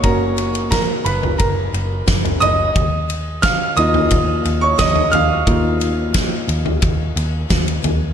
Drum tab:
RD |x-xxx-x-x-x-xxx-|x-x-x-x-x-x-x-x-|x-x-x-x-x-x-xxx-|
SD |----o-------o---|----o-------o---|----o-------o---|
FT |-------o-----oo-|-------o-----oo-|-------o------o-|
BD |o---o---o---o---|o---o---o---o---|o---o---o---o---|